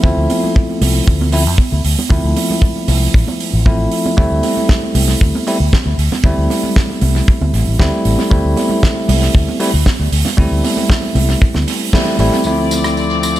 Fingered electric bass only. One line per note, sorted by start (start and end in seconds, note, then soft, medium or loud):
0.04 0.13 D2 medium
0.17 0.26 D2 medium
0.81 1.00 C2 medium
1.07 1.47 D2 medium
1.47 1.55 F2 medium
1.72 1.81 D2 medium
1.84 1.94 D2 medium
2.10 2.20 D2 medium
2.24 2.33 D2 loud
2.88 3.06 C2 medium
3.14 3.24 A1 medium
3.53 3.86 A1 medium
4.18 4.27 D2 medium
4.31 4.39 D2 medium
4.95 5.13 C2 medium
5.21 5.30 D2 medium
5.60 5.69 D2 medium
5.86 5.94 D2 medium
5.98 6.08 D2 medium
6.24 6.33 D2 medium
6.38 6.46 D2 loud
7.02 7.20 C2 medium
7.41 7.50 D2 medium
7.53 7.63 A1 medium
7.67 7.76 A1 medium
7.79 7.89 D2 medium
8.05 8.15 A1 medium
8.31 8.41 D2 medium
8.45 8.53 D2 loud
9.09 9.27 C2 medium
9.35 9.44 D2 medium
9.74 9.82 D2 medium
10.00 10.08 D2 loud
10.12 10.22 D2 medium
10.38 10.48 D2 medium
10.52 10.60 D2 loud
11.15 11.34 C2 medium
11.55 11.64 D2 medium
12.19 12.28 A1 medium